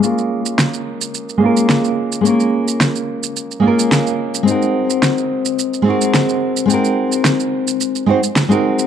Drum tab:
SH |xx-xxx-xxx-xxx-x|xx-xxx-xxx-xxx-x|xx-xxx-xxx-xxx-x|xx-xxx-xxx-xxx-x|
SD |----o-------o---|----o-------o---|----o-------o---|----o-------o---|